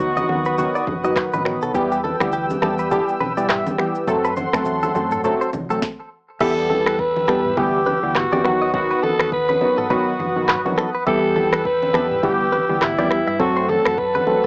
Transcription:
Already playing: fingered electric bass D2, synth keys F#3 B3 D#4 F#4, alto saxophone F#4, analog synth pad B4 F#5 D#6
0.00 kick
0.17 clean electric guitar D#5, high conga, shaker
0.29 fingered electric bass D#2, synth keys D#3 F#3 B3 F#4, high conga
0.45 clean electric guitar B4, shaker
0.57 synth keys D#3 F#3 B3 F#4, low conga, shaker
0.75 clean electric guitar D5, shaker
0.87 fingered electric bass F#1, kick, high conga
1.04 synth keys D#3 F#3 B3 F#4, clean electric guitar D#5, shaker
1.16 finger snap, kick, cross-stick, clap, shaker
1.33 fingered electric bass A1, clean electric guitar B4, high conga, shaker
1.45 synth keys D#3 F#3 B3 F#4, finger snap, cross-stick
1.62 fingered electric bass B1, clean electric guitar A4, shaker
1.74 fingered electric bass E2, synth keys E3 G3 B3 G4, analog synth pad G5 E6, kick, low conga, shaker
1.92 clean electric guitar G4, shaker
2.04 clean electric guitar A4, high conga
2.20 fingered electric bass D2, synth keys E3 G3 B3 G4, finger snap, kick, cross-stick, high conga, shaker
2.32 clean electric guitar G4, shaker
2.50 high conga, shaker
2.62 fingered electric bass E2, synth keys E3 G3 B3 G4, clean electric guitar A4, finger snap, cross-stick, high conga
2.78 clean electric guitar B4, shaker
2.91 synth keys E3 G3 B3 G4, clean electric guitar A4, kick, low conga, shaker
3.08 shaker
3.20 fingered electric bass B1, clean electric guitar B4, high conga
3.37 synth keys E3 G3 B3 G4, clean electric guitar D5, shaker
3.49 clean electric guitar E5, finger snap, kick, cross-stick, clap, mid tom, shaker
3.67 high conga, shaker
3.78 synth keys E3 G3 B3 G4, finger snap, cross-stick
3.95 shaker
4.07 fingered electric bass F#2, synth keys F#3 A3 C4 A4, analog synth pad A4 F#5 C6, kick, low conga, shaker
4.25 clean electric guitar B4, shaker
4.36 clean electric guitar C5, high conga, shaker
4.53 fingered electric bass E2, synth keys F#3 A3 C4 A4, finger snap, kick, cross-stick, high conga, shaker
4.65 kick, shaker
4.83 clean electric guitar A4, high conga, shaker
4.95 fingered electric bass F#2, synth keys F#3 A3 C4 A4, high conga, shaker
5.11 clean electric guitar A4, mid tom, shaker
5.24 synth keys F#3 A3 C4 A4, low conga, shaker
5.41 clean electric guitar C5, shaker
5.53 fingered electric bass C2, kick, high conga, shaker
5.70 synth keys F#3 A3 C4 A4, clean electric guitar A4, shaker
5.82 kick, snare
6.40 fingered electric bass E2, synth keys E3 G3 B3 G4, alto saxophone A4, analog synth pad B4 G5 E6, clean electric guitar E5, kick, crash, low conga
6.70 clean electric guitar A4, high conga
6.86 clean electric guitar B4, finger snap, cross-stick
6.99 alto saxophone B4, kick
7.16 high conga
7.28 fingered electric bass E2, synth keys E3 G3 B3 G4, clean electric guitar A4, finger snap, cross-stick, high conga
7.45 mid tom
7.57 fingered electric bass D2, synth keys E3 G3 B3 G4, alto saxophone G4, kick, low conga
7.86 clean electric guitar B4, high conga
8.03 fingered electric bass D2, synth keys E3 G3 B3 G4
8.15 alto saxophone F#4, finger snap, kick, cross-stick, clap, mid tom
8.32 fingered electric bass E2, synth keys E3 G3 B3 G4, clean electric guitar D5, high conga
8.44 fingered electric bass D#2, synth keys D#3 F#3 B3 F#4, analog synth pad F#5 D#6, finger snap, cross-stick
8.62 clean electric guitar D#5
8.73 synth keys D#3 F#3 B3 F#4, alto saxophone F#4, kick, low conga
8.91 clean electric guitar B4
9.03 clean electric guitar A4, alto saxophone A4, high conga
9.19 fingered electric bass D#2, finger snap, cross-stick
9.32 alto saxophone B4, kick
9.49 clean electric guitar B4, high conga
9.61 synth keys D#3 F#3 B3 F#4, high conga
9.78 clean electric guitar A4, mid tom
9.90 synth keys D#3 F#3 B3 F#4, alto saxophone F#4, clean electric guitar B4, kick, low conga
10.19 fingered electric bass F#1, high conga
10.36 synth keys D#3 F#3 B3 F#4
10.48 clean electric guitar B4, finger snap, kick, cross-stick, clap, mid tom
10.65 synth keys D#3 F#3 B3 F#4, high conga
10.78 clean electric guitar A4, finger snap, cross-stick
10.95 clean electric guitar B4
11.06 fingered electric bass E2, synth keys E3 G3 B3 G4, alto saxophone A4, clean electric guitar E5, analog synth pad G5 E6, kick, low conga
11.36 clean electric guitar A4, high conga
11.52 clean electric guitar B4, finger snap, cross-stick
11.65 alto saxophone B4, kick
11.82 high conga
11.94 fingered electric bass E2, synth keys E3 G3 B3 G4, clean electric guitar A4, finger snap, cross-stick, high conga
12.11 mid tom
12.23 fingered electric bass D2, synth keys E3 G3 B3 G4, alto saxophone G4, kick, low conga
12.52 clean electric guitar B4, high conga
12.69 fingered electric bass D2, synth keys E3 G3 B3 G4
12.81 alto saxophone E4, finger snap, kick, cross-stick, clap, mid tom
12.98 fingered electric bass E2, synth keys E3 G3 B3 G4, clean electric guitar D5, high conga
13.11 finger snap, cross-stick
13.27 fingered electric bass G2, clean electric guitar E5
13.39 fingered electric bass F#2, synth keys F#3 A3 C4 A4, alto saxophone F#4, analog synth pad A4 F#5 A5, kick, low conga
13.57 clean electric guitar C5
13.69 clean electric guitar A4, alto saxophone A4, high conga
13.85 fingered electric bass F#2, finger snap, cross-stick
13.98 alto saxophone B4, kick
14.15 clean electric guitar B4, high conga
14.26 synth keys F#3 A3 C4 A4, high conga

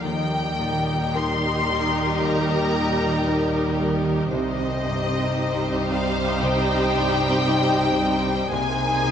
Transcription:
Already playing: harp G3
0.03 grand piano D#2, double bass section D#2, harp D#3, cello section D#3, viola section G3 D#4, violin section G4 A#4 G5
0.59 grand piano A#2, harp G3
1.15 grand piano D#4 A#4, harp A#4, violin section C6
1.69 grand piano G3, harp G3
2.21 grand piano D#2, harp D#3, violin section A#5
2.73 grand piano A#2, harp D#4
3.27 grand piano D#4 A#4, harp A#4
3.80 grand piano G3, harp G3
4.32 grand piano C2, double bass section C2, harp C3, cello section C3, viola section G3 D#4, violin section G4 C5 D#5
4.85 grand piano G2, harp C4
5.38 harp D#4, grand piano D#4 C5
5.90 grand piano G3, harp C4, violin section F5
6.42 grand piano C2, harp C3, violin section G5
6.94 grand piano G2, harp G3
7.47 harp D#4, grand piano D#4 C5
8.00 grand piano G3, harp C4
8.51 double bass section C2, grand piano C2, harp C3, cello section C3, viola section A#3 D#4, violin section G#4 C5 G#5
9.05 grand piano C3, harp G#3

